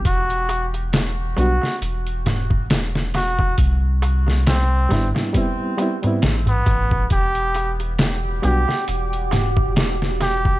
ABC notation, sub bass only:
X:1
M:4/4
L:1/8
Q:"Swing 16ths" 1/4=68
K:Em
V:1 name="Sub bass" clef=bass
E,,,3 B,,, E,,,4 | C,,3 G,,, z2 A,,, A,,, | E,,,3 B,,, E,,,4 |]